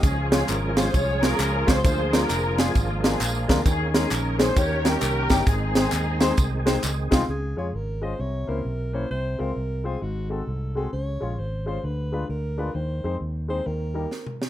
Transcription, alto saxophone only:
X:1
M:4/4
L:1/8
Q:"Swing" 1/4=132
K:Ab
V:1 name="Alto saxophone"
z8 | z8 | z8 | z8 |
A A B c d B2 c | c B2 A _G =A2 A | d2 c c =B2 _B2 | c2 z c B3 z |]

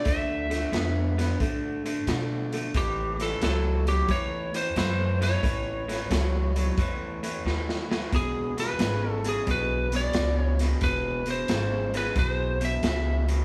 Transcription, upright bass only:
X:1
M:4/4
L:1/8
Q:"Swing" 1/4=89
K:A
V:1 name="Upright bass" clef=bass
D,,2 =F,,2 A,,2 B,,2 | A,,,2 C,,2 E,,2 F,,2 | A,,,2 C,,2 E,,2 ^D,,2 | E,,,2 G,,,2 B,,,2 C,,2 |
E,,,2 G,,,2 B,,,2 C,,2 |]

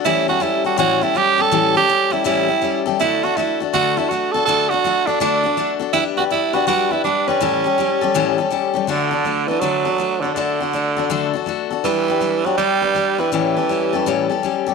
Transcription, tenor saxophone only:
X:1
M:4/4
L:1/8
Q:"Swing" 1/4=163
K:D
V:1 name="Tenor saxophone"
E F E F F E G A- | A G2 E E3 z | E F E z F E F A | A F2 D D3 z |
E F E F F E D C- | C6- C z | D,3 E, F,3 D, | D,6 z2 |
E,3 F, G,3 E, | E,6 z2 |]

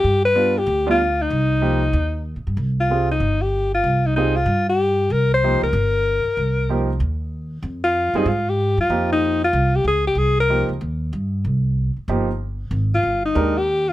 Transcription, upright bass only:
X:1
M:4/4
L:1/8
Q:"Swing" 1/4=189
K:Cm
V:1 name="Upright bass" clef=bass
G,,4 D,,4 | C,,4 E,,2- (3E,, B,, G,, | C,,4 G,,,4 | C,,4 G,,4 |
C,,3 _D,, G,,,3 z | C,,4 E,,4 | F,,3 ^F,, A,,3 F,, | F,,4 C,,2 _D,,2 |
C,,3 _D,, E,,2 G,,2 | C,,3 z G,,,4 | A,,,2 G,,,2 E,,4 |]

